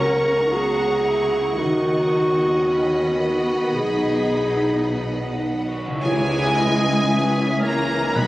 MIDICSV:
0, 0, Header, 1, 13, 480
1, 0, Start_track
1, 0, Key_signature, 5, "major"
1, 0, Tempo, 1067616
1, 713, Time_signature, 4, 2, 24, 8
1, 1200, Tempo, 1121495
1, 2640, Tempo, 1060071
1, 3654, End_track
2, 0, Start_track
2, 0, Title_t, "Violin section"
2, 0, Program_c, 0, 48
2, 0, Note_on_c, 0, 85, 73
2, 1198, Note_off_c, 0, 85, 0
2, 1205, Note_on_c, 0, 83, 61
2, 2553, Note_off_c, 0, 83, 0
2, 2633, Note_on_c, 0, 80, 117
2, 3340, Note_off_c, 0, 80, 0
2, 3364, Note_on_c, 0, 82, 106
2, 3601, Note_off_c, 0, 82, 0
2, 3604, Note_on_c, 0, 83, 108
2, 3654, Note_off_c, 0, 83, 0
2, 3654, End_track
3, 0, Start_track
3, 0, Title_t, "Flute"
3, 0, Program_c, 1, 73
3, 2640, Note_on_c, 1, 73, 80
3, 2883, Note_on_c, 1, 75, 76
3, 2890, Note_off_c, 1, 73, 0
3, 3120, Note_on_c, 1, 76, 86
3, 3127, Note_off_c, 1, 75, 0
3, 3363, Note_on_c, 1, 73, 69
3, 3369, Note_off_c, 1, 76, 0
3, 3605, Note_on_c, 1, 75, 79
3, 3612, Note_off_c, 1, 73, 0
3, 3654, Note_off_c, 1, 75, 0
3, 3654, End_track
4, 0, Start_track
4, 0, Title_t, "Oboe"
4, 0, Program_c, 2, 68
4, 2647, Note_on_c, 2, 68, 96
4, 3350, Note_on_c, 2, 70, 94
4, 3357, Note_off_c, 2, 68, 0
4, 3595, Note_on_c, 2, 71, 97
4, 3602, Note_off_c, 2, 70, 0
4, 3654, Note_off_c, 2, 71, 0
4, 3654, End_track
5, 0, Start_track
5, 0, Title_t, "Clarinet"
5, 0, Program_c, 3, 71
5, 0, Note_on_c, 3, 70, 83
5, 230, Note_on_c, 3, 68, 92
5, 237, Note_off_c, 3, 70, 0
5, 704, Note_off_c, 3, 68, 0
5, 707, Note_on_c, 3, 66, 92
5, 1420, Note_off_c, 3, 66, 0
5, 1425, Note_on_c, 3, 66, 70
5, 1663, Note_on_c, 3, 68, 84
5, 1670, Note_off_c, 3, 66, 0
5, 2395, Note_off_c, 3, 68, 0
5, 3654, End_track
6, 0, Start_track
6, 0, Title_t, "Violin section"
6, 0, Program_c, 4, 48
6, 0, Note_on_c, 4, 78, 62
6, 0, Note_on_c, 4, 82, 61
6, 691, Note_off_c, 4, 78, 0
6, 691, Note_off_c, 4, 82, 0
6, 712, Note_on_c, 4, 78, 56
6, 713, Note_on_c, 4, 75, 64
6, 2533, Note_off_c, 4, 78, 0
6, 2550, Note_off_c, 4, 75, 0
6, 2635, Note_on_c, 4, 68, 67
6, 2637, Note_on_c, 4, 64, 73
6, 3102, Note_off_c, 4, 68, 0
6, 3103, Note_off_c, 4, 64, 0
6, 3126, Note_on_c, 4, 61, 70
6, 3126, Note_on_c, 4, 68, 72
6, 3598, Note_on_c, 4, 63, 68
6, 3601, Note_off_c, 4, 61, 0
6, 3654, Note_off_c, 4, 63, 0
6, 3654, Note_off_c, 4, 68, 0
6, 3654, End_track
7, 0, Start_track
7, 0, Title_t, "Harp"
7, 0, Program_c, 5, 46
7, 0, Note_on_c, 5, 49, 66
7, 0, Note_on_c, 5, 58, 49
7, 0, Note_on_c, 5, 61, 55
7, 0, Note_on_c, 5, 73, 56
7, 75, Note_on_c, 5, 59, 45
7, 225, Note_off_c, 5, 58, 0
7, 231, Note_on_c, 5, 58, 55
7, 345, Note_off_c, 5, 59, 0
7, 389, Note_off_c, 5, 73, 0
7, 394, Note_on_c, 5, 73, 55
7, 429, Note_off_c, 5, 61, 0
7, 554, Note_on_c, 5, 66, 51
7, 710, Note_on_c, 5, 51, 62
7, 730, Note_off_c, 5, 58, 0
7, 731, Note_off_c, 5, 49, 0
7, 732, Note_off_c, 5, 73, 0
7, 871, Note_on_c, 5, 59, 44
7, 1034, Note_on_c, 5, 61, 46
7, 1188, Note_off_c, 5, 59, 0
7, 1194, Note_on_c, 5, 59, 44
7, 1309, Note_off_c, 5, 61, 0
7, 1356, Note_on_c, 5, 71, 50
7, 1508, Note_off_c, 5, 66, 0
7, 1513, Note_on_c, 5, 66, 46
7, 1676, Note_on_c, 5, 47, 54
7, 1696, Note_off_c, 5, 51, 0
7, 1838, Note_on_c, 5, 63, 38
7, 2002, Note_on_c, 5, 64, 42
7, 2156, Note_off_c, 5, 63, 0
7, 2161, Note_on_c, 5, 63, 50
7, 2274, Note_off_c, 5, 64, 0
7, 2320, Note_off_c, 5, 71, 0
7, 2325, Note_on_c, 5, 71, 51
7, 2483, Note_off_c, 5, 66, 0
7, 2488, Note_on_c, 5, 66, 46
7, 2567, Note_on_c, 5, 49, 71
7, 2586, Note_on_c, 5, 61, 56
7, 2605, Note_on_c, 5, 64, 56
7, 2624, Note_on_c, 5, 68, 55
7, 2655, Note_off_c, 5, 59, 0
7, 2657, Note_off_c, 5, 47, 0
7, 2658, Note_off_c, 5, 63, 0
7, 2660, Note_off_c, 5, 71, 0
7, 2661, Note_off_c, 5, 66, 0
7, 3519, Note_on_c, 5, 59, 66
7, 3543, Note_on_c, 5, 63, 60
7, 3560, Note_on_c, 5, 75, 60
7, 3580, Note_off_c, 5, 49, 0
7, 3590, Note_off_c, 5, 61, 0
7, 3601, Note_off_c, 5, 64, 0
7, 3611, Note_off_c, 5, 68, 0
7, 3654, Note_off_c, 5, 59, 0
7, 3654, Note_off_c, 5, 63, 0
7, 3654, Note_off_c, 5, 75, 0
7, 3654, End_track
8, 0, Start_track
8, 0, Title_t, "French horn section"
8, 0, Program_c, 6, 60
8, 2634, Note_on_c, 6, 61, 84
8, 2634, Note_on_c, 6, 64, 83
8, 3578, Note_off_c, 6, 61, 0
8, 3579, Note_off_c, 6, 64, 0
8, 3602, Note_on_c, 6, 54, 83
8, 3603, Note_on_c, 6, 63, 76
8, 3654, Note_off_c, 6, 54, 0
8, 3654, Note_off_c, 6, 63, 0
8, 3654, End_track
9, 0, Start_track
9, 0, Title_t, "Viola section"
9, 0, Program_c, 7, 48
9, 0, Note_on_c, 7, 61, 85
9, 231, Note_on_c, 7, 66, 74
9, 232, Note_off_c, 7, 61, 0
9, 463, Note_on_c, 7, 64, 67
9, 471, Note_off_c, 7, 66, 0
9, 702, Note_off_c, 7, 64, 0
9, 708, Note_on_c, 7, 63, 71
9, 1191, Note_on_c, 7, 61, 62
9, 1197, Note_off_c, 7, 63, 0
9, 1430, Note_on_c, 7, 59, 69
9, 1433, Note_off_c, 7, 61, 0
9, 1672, Note_on_c, 7, 63, 72
9, 1675, Note_off_c, 7, 59, 0
9, 2399, Note_off_c, 7, 63, 0
9, 2638, Note_on_c, 7, 52, 74
9, 2638, Note_on_c, 7, 56, 69
9, 3103, Note_off_c, 7, 56, 0
9, 3104, Note_off_c, 7, 52, 0
9, 3124, Note_on_c, 7, 52, 72
9, 3125, Note_off_c, 7, 52, 0
9, 3125, Note_on_c, 7, 52, 71
9, 3354, Note_off_c, 7, 52, 0
9, 3360, Note_on_c, 7, 52, 82
9, 3593, Note_on_c, 7, 51, 73
9, 3594, Note_off_c, 7, 52, 0
9, 3594, Note_on_c, 7, 54, 76
9, 3654, Note_off_c, 7, 51, 0
9, 3654, Note_off_c, 7, 54, 0
9, 3654, End_track
10, 0, Start_track
10, 0, Title_t, "Cello section"
10, 0, Program_c, 8, 48
10, 0, Note_on_c, 8, 49, 67
10, 694, Note_off_c, 8, 49, 0
10, 713, Note_on_c, 8, 51, 60
10, 1661, Note_off_c, 8, 51, 0
10, 1680, Note_on_c, 8, 47, 62
10, 2551, Note_off_c, 8, 47, 0
10, 2640, Note_on_c, 8, 56, 95
10, 3344, Note_off_c, 8, 56, 0
10, 3362, Note_on_c, 8, 58, 86
10, 3600, Note_off_c, 8, 58, 0
10, 3603, Note_on_c, 8, 59, 93
10, 3654, Note_off_c, 8, 59, 0
10, 3654, End_track
11, 0, Start_track
11, 0, Title_t, "Timpani"
11, 0, Program_c, 10, 47
11, 3600, Note_on_c, 10, 47, 97
11, 3654, Note_off_c, 10, 47, 0
11, 3654, End_track
12, 0, Start_track
12, 0, Title_t, "Double bass section"
12, 0, Program_c, 11, 48
12, 0, Note_on_c, 11, 37, 74
12, 693, Note_off_c, 11, 37, 0
12, 712, Note_on_c, 11, 39, 68
12, 1661, Note_off_c, 11, 39, 0
12, 1675, Note_on_c, 11, 35, 61
12, 2549, Note_off_c, 11, 35, 0
12, 2639, Note_on_c, 11, 37, 85
12, 3581, Note_off_c, 11, 37, 0
12, 3597, Note_on_c, 11, 35, 74
12, 3654, Note_off_c, 11, 35, 0
12, 3654, End_track
13, 0, Start_track
13, 0, Title_t, "Tam-tam"
13, 2647, Note_on_c, 9, 52, 65
13, 2693, Note_off_c, 9, 52, 0
13, 3654, End_track
0, 0, End_of_file